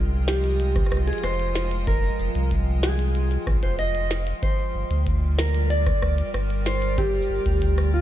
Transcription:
Already playing: C2 F3 G#3 F4 A#4 D#5 G5
0.28 G4, snare
0.44 closed hi-hat
0.60 closed hi-hat
0.76 kick, cross-stick, closed hi-hat
0.86 cross-stick
0.91 C2, cross-stick
0.97 cross-stick
1.07 G#4, closed hi-hat
1.13 closed hi-hat
1.18 closed hi-hat
1.23 F1 C5, cross-stick, closed hi-hat
1.29 closed hi-hat
1.34 closed hi-hat
1.40 closed hi-hat
1.55 snare
1.71 closed hi-hat
1.87 A#4, kick, closed hi-hat
2.19 F1, shaker
2.35 C2, closed hi-hat
2.51 kick, closed hi-hat
2.83 G#4, snare
2.99 closed hi-hat
3.15 closed hi-hat
3.31 closed hi-hat
3.47 A#1, kick, cross-stick
3.63 F1 C5, closed hi-hat
3.79 D#5, closed hi-hat
3.95 closed hi-hat
4.11 snare
4.27 closed hi-hat
4.43 G3 C5, kick, closed hi-hat
4.69 D5
4.75 G1
4.90 D2, closed hi-hat
5.06 kick, closed hi-hat
5.17 A#4
5.38 A#4, snare
5.55 closed hi-hat
5.70 D5, closed hi-hat
5.86 kick, cross-stick, closed hi-hat
6.02 D2, cross-stick
6.18 closed hi-hat
6.34 G1, cross-stick, closed hi-hat
6.50 closed hi-hat
6.66 C5, snare
6.82 closed hi-hat
6.98 G4, kick, closed hi-hat
7.22 shaker
7.30 G1
7.46 D2, kick, closed hi-hat
7.62 kick, closed hi-hat
7.78 cross-stick, closed hi-hat
7.94 F4

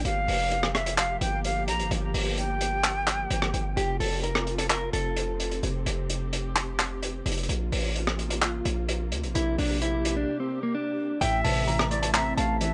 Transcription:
0.05 G1 F3 A#3 G4 F5, closed hi-hat
0.28 F1, open hi-hat
0.51 closed hi-hat
0.63 cross-stick
0.75 E5, cross-stick, closed hi-hat
0.86 closed hi-hat
0.98 F5, clap, closed hi-hat
1.21 G1 G5, closed hi-hat
1.44 F5, closed hi-hat
1.68 A#1 A#5, closed hi-hat
1.79 G1, closed hi-hat
1.91 G1, closed hi-hat
2.14 G1, open hi-hat
2.38 G5, closed hi-hat
2.61 closed hi-hat
2.84 clap, closed hi-hat
3.07 clap, closed hi-hat
3.30 G1, closed hi-hat
3.42 cross-stick
3.54 G1, closed hi-hat
3.77 F1 C3 C4 F4 G4, closed hi-hat
4.00 F1 A4, open hi-hat
4.23 A#4, closed hi-hat
4.35 cross-stick
4.47 closed hi-hat
4.58 A4, closed hi-hat
4.70 A#4, clap, closed hi-hat
4.93 F1 A4, closed hi-hat
5.17 closed hi-hat
5.40 closed hi-hat
5.51 closed hi-hat
5.63 F1 G4, closed hi-hat
5.86 F1, closed hi-hat
6.10 closed hi-hat
6.33 closed hi-hat
6.56 clap, closed hi-hat
6.79 clap, closed hi-hat
7.03 closed hi-hat
7.26 F1, closed hi-hat
7.32 closed hi-hat
7.37 closed hi-hat
7.43 closed hi-hat
7.49 A#1 C3 A#3 F4, closed hi-hat
7.72 A1, open hi-hat
7.96 closed hi-hat
8.07 cross-stick
8.19 closed hi-hat
8.30 closed hi-hat
8.42 clap, closed hi-hat
8.65 A#1, closed hi-hat
8.89 closed hi-hat
9.12 D2, closed hi-hat
9.23 A#1, closed hi-hat
9.35 A#1 E4 G4, closed hi-hat
9.58 A#1 D4, open hi-hat
9.82 E4, closed hi-hat
10.05 closed hi-hat
10.17 D4
10.40 C4
10.63 A#3
10.75 D4
11.21 A1 A2 C3 A3 E4 E5 G5, closed hi-hat
11.44 A1 C3 A5, open hi-hat
11.68 E3 A#5, closed hi-hat
11.79 cross-stick
11.91 A3 D5, closed hi-hat
12.02 A5, closed hi-hat
12.14 C4 E5 A#5, clap, closed hi-hat
12.37 A1 A3 F5 A5, closed hi-hat
12.61 E3 E5, closed hi-hat

